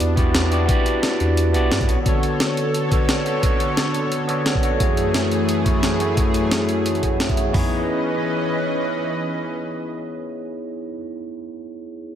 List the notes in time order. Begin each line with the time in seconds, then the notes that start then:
Already playing: B3 D4 E4 F#4 G4 D5
0.00 E2, closed hi-hat
0.16 B3 E4 F#4 G4 D5, kick, closed hi-hat
0.35 snare, closed hi-hat
0.50 B3 E4 F#4 G4 D5, closed hi-hat
0.66 B3 E4 F#4, kick, closed hi-hat
0.70 G4 D5
0.86 closed hi-hat
1.03 snare, closed hi-hat
1.20 E2, closed hi-hat
1.37 closed hi-hat
1.53 B1 B3 E4 F#4 G4 D5, closed hi-hat
1.72 G2, snare, closed hi-hat
1.81 kick, closed hi-hat
1.87 B1 D3 B3 D4 F#4 A4 C#5, closed hi-hat
2.03 B3 D4 F#4, kick, closed hi-hat
2.07 A4 C#5
2.23 closed hi-hat
2.40 snare, closed hi-hat
2.57 closed hi-hat
2.74 closed hi-hat
2.90 B3 D4 F#4 A4 C#5, kick, closed hi-hat
3.09 snare, closed hi-hat
3.24 B3 D4 F#4 A4 C#5, closed hi-hat
3.40 B3 D4 F#4, kick, closed hi-hat
3.45 A4 C#5
3.60 closed hi-hat
3.77 snare, closed hi-hat
3.94 closed hi-hat
4.12 closed hi-hat
4.27 B3 D4 F#4 A4 C#5, closed hi-hat
4.46 snare, closed hi-hat
4.55 kick
4.62 B3 D4 F#4 A4 C#5, closed hi-hat
4.77 F#2 E3 A3 E4 F#4 G#4, kick, closed hi-hat
4.82 G#4 C#5
4.97 closed hi-hat
5.14 snare, closed hi-hat
5.32 closed hi-hat
5.49 closed hi-hat
5.64 A3 E4 F#4 G#4 C#5, kick, closed hi-hat
5.83 snare, closed hi-hat
5.99 A3 E4 F#4 G#4 C#5, closed hi-hat
6.14 A3 E4 F#4, kick, closed hi-hat
6.19 G#4 C#5
6.34 closed hi-hat
6.51 snare, closed hi-hat
6.69 closed hi-hat
6.86 closed hi-hat
6.95 closed hi-hat
7.02 A3 E4 F#4 G#4 C#5, kick, closed hi-hat
7.20 snare, closed hi-hat
7.29 kick, closed hi-hat
7.36 A3 E4 F#4 G#4 C#5, closed hi-hat
7.50 B3 D#4
7.54 E3 C#4 E4 G#4 B4 D#5, kick, floor tom, open hi-hat
7.59 C#5